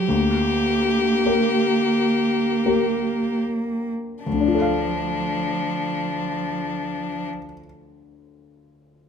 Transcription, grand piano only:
0.09 1.22 D2 soft
1.26 2.60 A#3 soft
1.26 2.60 G4 soft
1.26 2.60 A#4 soft
2.66 4.23 A#3 soft
2.66 4.22 G4 soft
2.66 4.23 A#4 soft
4.26 7.30 D2 soft
4.33 7.37 D3 soft
4.40 7.43 D4 soft
4.48 7.51 F4 soft
4.55 7.58 A4 soft
4.62 7.65 F5 soft

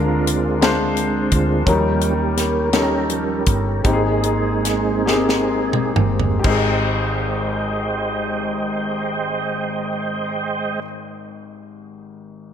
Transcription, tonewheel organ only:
0.00 1.63 D3 soft
0.00 1.63 G#3 soft
0.00 1.63 C4 medium
0.00 0.59 F4 medium
0.00 0.32 A#4 medium
1.32 1.64 F4 medium
1.67 2.13 F3 soft
1.67 2.14 G3 soft
1.67 2.70 A#3 medium
1.67 2.14 C#4 medium
1.67 2.70 G4 medium
2.74 3.10 C#4 medium
2.74 3.82 G4 medium
2.74 3.82 A#4 medium
3.10 3.44 F3 soft
3.10 3.44 G3 soft
3.10 3.44 C#4 soft
3.85 5.03 G#3 soft
3.85 5.03 A#3 soft
3.85 5.93 C4 medium
3.85 5.93 D#4 medium
3.85 5.94 G#4 medium
5.97 6.41 G3 soft
5.97 6.41 A#3 soft
5.97 6.42 C4 soft
6.46 10.80 G#3 medium
6.46 10.80 C5 soft
6.46 10.80 D#5 medium
6.46 10.80 G5 soft

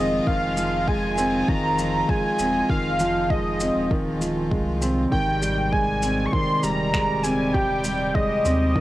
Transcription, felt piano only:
0.00 0.27 D#3 medium
0.00 0.57 F3 loud
0.00 0.87 G#3 medium
0.00 1.18 C4 medium
0.27 0.56 D#3 loud
0.57 0.86 F3 medium
0.87 1.05 G#3 medium
1.18 1.47 C4 loud
1.48 1.77 D#3 loud
1.78 2.07 F3 medium
2.09 2.38 G#3 medium
2.39 2.68 C4 medium
2.70 2.98 D#3 medium
3.00 3.29 F3 loud
3.30 3.47 G#3 medium
3.61 3.78 C4 medium
3.91 4.19 D#3 loud
4.21 4.50 F3 medium
4.51 4.68 G#3 medium
4.81 5.10 C4 medium
5.12 5.41 D#3 loud
5.42 5.71 G3 medium
5.72 6.01 G#3 medium
6.02 6.31 C4 medium
6.33 6.62 D#3 medium
6.63 6.92 G3 medium
6.93 7.11 G#3 medium
7.24 7.41 C4 medium
7.54 7.83 G4 loud
7.85 8.13 G3 medium
8.15 8.32 G#3 medium
8.45 8.74 C4 medium
8.75 8.81 D#3 loud

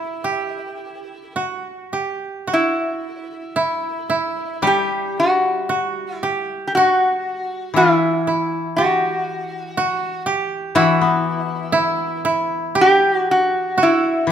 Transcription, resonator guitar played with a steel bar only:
0.00 1.33 E4 medium
2.53 4.62 E4 medium
4.67 5.19 G4 medium
5.20 6.16 F#4 medium
6.16 6.64 E4 medium
6.67 6.74 G4 medium
6.75 7.73 F#4 medium
7.77 8.80 E4 medium
8.76 10.23 F#4 medium
10.75 12.22 E4 medium
12.81 13.15 G4 medium
13.15 13.27 F#4 medium
13.31 13.78 F#4 medium
13.83 14.28 E4 medium

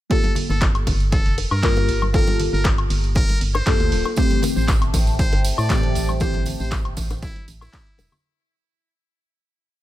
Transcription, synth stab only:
0.10 1.60 A#3 loud
0.10 1.60 F4 medium
0.10 1.61 G4 medium
0.10 1.61 A4 loud
1.63 2.11 A#3 medium
1.63 2.11 F4 medium
1.63 2.11 G4 medium
1.63 2.11 A#4 medium
2.13 3.63 A#3 medium
2.13 3.64 F4 medium
2.13 3.64 G4 medium
2.13 3.64 A4 loud
3.66 4.14 A#3 medium
3.66 4.14 F4 medium
3.66 4.15 G4 medium
3.66 4.15 A4 medium
4.16 5.67 E3 loud
4.16 5.67 A3 medium
4.16 5.67 C4 medium
4.16 5.68 G4 loud
5.69 6.18 E3 medium
5.69 6.18 A3 medium
5.69 6.18 C4 medium
5.69 6.18 G4 medium
6.20 7.70 E3 loud
6.20 7.70 A3 medium
6.20 7.71 C4 medium
6.20 7.71 G4 loud

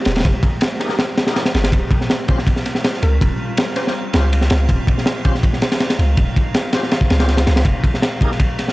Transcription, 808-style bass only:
0.06 0.23 D#1 loud
0.25 0.34 F1 loud
1.55 1.71 G1 loud
1.73 1.81 D#1 loud
3.03 3.19 C#2 loud
3.21 3.30 D#1 loud
4.14 4.49 C#2 medium
4.51 4.67 C#2 loud
4.69 4.78 D#1 loud
5.99 6.16 C#2 loud
6.17 6.26 D#1 loud
7.10 7.46 C#2 medium
7.47 7.64 C#2 loud
7.65 7.74 F1 loud

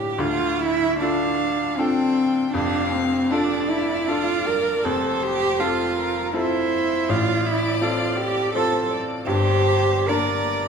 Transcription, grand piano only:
0.00 0.14 D2 medium
0.00 0.21 A2 soft
0.00 0.21 D4 soft
0.00 0.20 F4 soft
0.18 2.50 D2 medium
0.18 2.50 D3 medium
1.01 1.75 D4 medium
1.01 1.75 F4 medium
1.01 1.75 A4 medium
1.78 2.50 D4 medium
1.78 2.50 F4 medium
1.78 2.50 A4 medium
2.54 4.80 F1 medium
2.54 4.80 F2 medium
3.31 4.03 D4 medium
3.31 4.03 F4 medium
3.31 4.03 A4 medium
4.08 4.80 D4 medium
4.08 4.80 F4 medium
4.08 4.80 A4 medium
4.84 7.05 F1 medium
4.84 7.05 F2 medium
5.59 6.30 C4 medium
5.59 6.30 F4 medium
5.59 6.30 A4 medium
6.33 7.05 C4 soft
6.33 7.05 F4 medium
6.33 7.05 A4 medium
7.09 9.23 A1 medium
7.09 9.23 A2 medium
7.81 8.51 C4 medium
7.81 8.51 F4 soft
7.81 8.51 A4 medium
8.55 9.23 C4 medium
8.55 9.23 F4 medium
8.55 9.23 A4 medium
9.27 10.68 G1 medium
9.27 10.68 G2 medium
10.09 10.68 A#3 medium
10.09 10.68 D4 medium
10.09 10.68 A#4 medium

